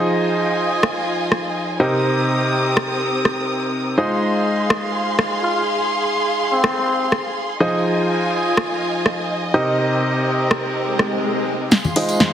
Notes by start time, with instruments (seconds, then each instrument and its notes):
Already playing: upright piano F3 D#4 F4 G#4 C5 D#5, violin section F4 D#5 G#5
0.83 cross-stick
1.32 cross-stick
1.80 upright piano C3 D#4 G4 A#4 C5 D#5, violin section C4 A#4 D#6
2.77 cross-stick
3.25 cross-stick
3.98 upright piano G#3 D#4 F4 G#4 C5 D#5, violin section G#4 F5 C6
4.70 cross-stick
5.19 cross-stick
5.43 muted trumpet F4
5.55 muted trumpet F4
6.52 muted trumpet C4
6.64 cross-stick
7.12 cross-stick
7.60 upright piano F3 D#4 F4 G#4 C5 D#5, violin section F4 D#5 G#5
8.57 cross-stick
9.06 cross-stick
9.54 upright piano C3 D#4 G4 A#4 C5 D#5, violin section C4 A#4
10.51 cross-stick
10.75 swell
10.99 cross-stick
11.71 violin section G#4 F5 C6, snare, closed hi-hat, tambourine, riser
11.84 tambourine, high conga
11.96 upright piano G#3 D#4 F4 G#4 C5 D#5, open hi-hat
12.09 closed hi-hat, tambourine
12.20 snare, closed hi-hat, tambourine, high conga